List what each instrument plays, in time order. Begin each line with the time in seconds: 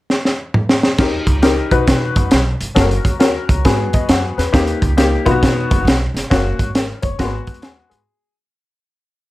0.10 snare
0.25 snare
0.54 mid tom
0.69 snare
0.83 snare
0.98 upright bass D#2, upright piano D#4 G4 A#4, kick, snare, crash
1.27 upright bass C#2, kick, closed hi-hat
1.42 upright piano D#4 G4 A#4, snare, closed hi-hat
1.71 upright bass B1, upright piano D#4 F#4 B4, kick, closed hi-hat
1.87 upright bass B2, kick, snare, closed hi-hat
2.16 upright bass F#1, kick, closed hi-hat
2.31 upright bass B1, snare, closed hi-hat
2.61 upright bass G1, closed hi-hat
2.75 upright bass F#1, upright piano C#4 F#4 A4, kick, snare, closed hi-hat
2.81 upright piano A#4
2.91 closed hi-hat
3.05 upright bass D#2, kick, closed hi-hat
3.19 upright piano C#4 F#4 A#4, snare, closed hi-hat
3.49 upright bass C#2, kick, closed hi-hat
3.65 upright bass G#2, upright piano B3 F#4 G#4, kick, snare, closed hi-hat
3.93 upright bass D#2, upright piano D#5, kick, closed hi-hat
4.09 upright bass F#2, upright piano F#5, snare, closed hi-hat
4.38 upright bass E2, upright piano B4, snare, closed hi-hat
4.52 upright bass D#2, upright piano A#3 D#4 G4, kick, snare, closed hi-hat
4.67 closed hi-hat
4.82 upright bass C#2, kick, closed hi-hat
4.97 upright piano A#3 D#4 G4, snare, closed hi-hat
5.25 upright bass B1, upright piano B3 D#4 F4, kick, closed hi-hat
5.31 upright piano F#4
5.43 upright bass B2, kick, snare, closed hi-hat
5.71 upright bass F#1, kick, closed hi-hat
5.85 upright bass B1, snare, closed hi-hat
6.14 upright bass G1, snare, closed hi-hat
6.30 upright bass F#1, upright piano A#3 C#4 F#4, kick, snare, closed hi-hat
6.59 upright bass G#1, kick, closed hi-hat
6.75 upright piano A#4, snare, closed hi-hat
7.02 upright bass F#1, upright piano C#5, kick, closed hi-hat
7.19 upright bass G#1, upright piano G#3 A#3 F#4, kick, snare, closed hi-hat
7.24 upright piano B3
7.47 upright bass D#2, kick, closed hi-hat
7.54 closed hi-hat
7.62 upright piano G#5, snare, closed hi-hat
7.90 upright bass G#2, upright piano G#4, closed hi-hat